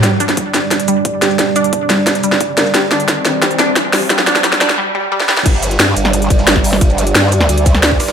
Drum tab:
CC |----------------|----------------|----------------|----------------|
RD |----------------|----------------|----------------|----------------|
HH |x-xxx-x-xxx-x-x-|x-xxx-x-xxx-x-x-|x-xxx-x-xxx-x-o-|x-xxx-x---------|
SH |--x---x---x---xx|--x---x---x---xx|--x---x---x---xx|-xx---x---------|
SD |o--o--o-o-----o-|o-----o-o--o--o-|o-o-o-o-o-o-o-o-|oooooooo-----ooo|
BD |o---o---o---o---|o---o---o---o---|o---o---o---o---|o---o-----------|

CC |x---------------|----------------|
RD |x-x-x-x-x-x-xx--|xxxxx-x-xxx-x-xx|
HH |x-xxx-x-xxx-x-o-|x-xxx-x-xxx-x-o-|
SH |-xx---x---xx--xx|-xx---x---xx--xx|
SD |---ooo-o---ooo-o|----oo-o---oo-oo|
BD |o---------o--o--|o---------o--o--|